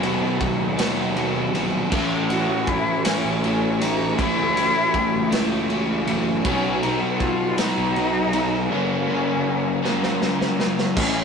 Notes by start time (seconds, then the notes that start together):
Already playing: D#2 B2 D#3 F#3 B3 D#4 D#5 B5
0.01 B2 D#3 F#3 B3 F#4, ride
0.22 B2
0.41 A#3, kick, ride
0.59 D#2
0.77 B2 D#3 F#3 A#3 B3 D#4 F#4, snare, ride
1.15 B2 D#3 F#3 B3 F#4, ride
1.53 A#1 B2 D#3 F#3 B3 F#4, ride
1.91 A1 A2 E3 A3 C#4 E4 A4 C#5 C#6, kick, crash
2.29 A2 E3 A3 C#4 E4 F#4, ride
2.49 A2
2.67 E4, kick, ride
3.05 A2 E3 A3 C#4 E4, snare, ride
3.24 A1
3.43 A2 E3 A3 C#4 E4, ride
3.80 A2 E3 A3 C#4 D#4 E4, ride
4.17 A2 E3 A3 C#4 E4, kick, ride
4.38 C#2
4.55 A2 E3 A3 C#4 E4, ride
4.76 A2
4.94 kick, ride
5.15 C#2
5.31 A2 E3 A3 C#4 E4, snare, ride
5.68 A2 E3 A3 C#4 E4, ride
6.06 F#1 A2 E3 A3 C#4 E4, ride
6.43 B1 B2 F#3 B3 C#4 B4 D#5 B5, kick, ride
6.47 D#4
6.82 B2 F#3 B3 D#4, ride
7.03 B2
7.17 F4, kick, ride
7.57 B2 F#3 B3 D#4, snare, ride
7.78 B1
7.96 B2 F#3 B3 D#4, ride
8.33 B2 F#3 B3 D#4, ride
8.70 F#2 C#3 F#3 A#3 C#4 C#5 F5 A#5
9.07 F#2 C#3 F#3 A#3 C#4
9.83 F#2 C#3 F#3 A#3 C#4, snare
10.03 snare
10.22 F#2 C#3 F#3 A#3 C#4, snare
10.41 snare
10.59 F#2 C#3 F#3 A#3 C#4, snare
10.79 snare
10.96 A1 A2 E3 A3 C#4 E4 A4 C#5 C#6, kick, crash